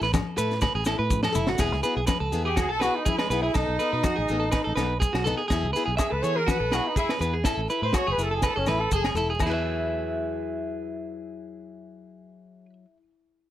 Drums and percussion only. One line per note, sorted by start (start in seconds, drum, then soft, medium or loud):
0.01 snare soft
0.01 maracas soft
0.14 kick medium
0.14 snare medium
0.14 high conga loud
0.14 low agogo medium
0.14 maracas medium
0.38 maracas loud
0.51 snare soft
0.51 maracas soft
0.61 kick medium
0.61 snare medium
0.61 muted conga soft
0.61 high conga medium
0.61 low conga medium
0.61 low agogo medium
0.61 maracas medium
0.85 snare medium
0.85 muted conga soft
0.85 low agogo medium
0.85 maracas loud
1.10 kick medium
1.10 high conga medium
1.10 maracas medium
1.23 snare medium
1.23 high conga medium
1.23 low agogo medium
1.35 low conga medium
1.35 maracas loud
1.47 snare medium
1.47 low conga medium
1.58 kick medium
1.58 snare medium
1.58 low agogo medium
1.58 maracas medium
1.72 snare soft
1.83 muted conga soft
1.83 maracas medium
2.07 kick medium
2.07 snare medium
2.07 high conga medium
2.07 low agogo medium
2.07 maracas loud
2.33 snare soft
2.33 maracas medium
2.57 kick medium
2.57 snare medium
2.57 muted conga soft
2.57 high conga medium
2.57 low agogo medium
2.57 maracas medium
2.81 snare medium
2.81 low agogo medium
2.81 maracas medium
3.06 kick medium
3.06 high conga medium
3.06 maracas medium
3.19 snare medium
3.19 low agogo medium
3.31 muted conga soft
3.31 maracas medium
3.54 kick medium
3.54 snare medium
3.54 low agogo medium
3.54 maracas medium
3.79 muted conga soft
3.79 maracas medium
4.03 kick medium
4.03 snare medium
4.03 high conga loud
4.03 low agogo medium
4.03 maracas medium
4.28 maracas medium
4.52 kick medium
4.52 snare medium
4.52 muted conga soft
4.52 low agogo medium
4.52 maracas medium
4.77 snare medium
4.77 high conga medium
4.77 low agogo medium
4.77 maracas medium
5.02 kick medium
5.02 high conga medium
5.02 maracas medium
5.14 snare medium
5.14 low agogo medium
5.26 muted conga soft
5.26 low conga medium
5.26 maracas medium
5.50 kick medium
5.50 snare medium
5.50 muted conga soft
5.50 low agogo medium
5.50 maracas medium
5.75 snare soft
5.75 muted conga soft
5.75 maracas medium
5.98 kick medium
5.98 snare medium
5.98 high conga medium
5.98 low agogo medium
5.98 maracas medium
6.24 maracas medium
6.48 kick medium
6.48 snare medium
6.48 muted conga soft
6.48 high conga medium
6.48 low agogo medium
6.48 maracas medium
6.71 snare medium
6.71 low agogo medium
6.71 maracas medium
6.96 kick medium
6.96 high conga medium
6.96 maracas medium
7.09 snare medium
7.09 low agogo medium
7.22 muted conga soft
7.22 maracas medium
7.44 kick medium
7.44 snare medium
7.44 muted conga soft
7.44 low agogo medium
7.44 maracas medium
7.70 muted conga soft
7.70 maracas medium
7.93 kick medium
7.93 snare medium
7.93 high conga medium
7.93 low agogo medium
7.93 maracas medium
8.19 maracas medium
8.42 kick medium
8.42 snare medium
8.42 muted conga soft
8.42 low agogo medium
8.42 maracas medium
8.66 snare medium
8.66 high conga medium
8.66 low agogo medium
8.66 maracas medium
8.91 kick medium
8.91 high conga medium
8.91 maracas medium
9.04 snare medium
9.04 low agogo medium
9.15 muted conga soft
9.15 low conga medium
9.15 maracas medium
9.40 kick medium
9.40 crash medium
9.40 muted conga medium
9.40 low agogo medium
9.40 maracas medium